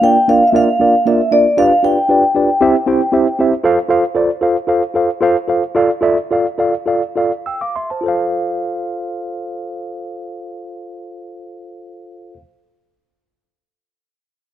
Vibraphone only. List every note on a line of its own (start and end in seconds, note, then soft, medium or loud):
0.04 0.30 G5 loud
0.29 0.47 F5 loud
0.47 0.55 E5 medium
0.56 1.08 F5 loud
1.07 1.31 E5 loud
1.32 1.59 D5 medium
1.58 1.85 F5 loud
1.84 3.35 G5 loud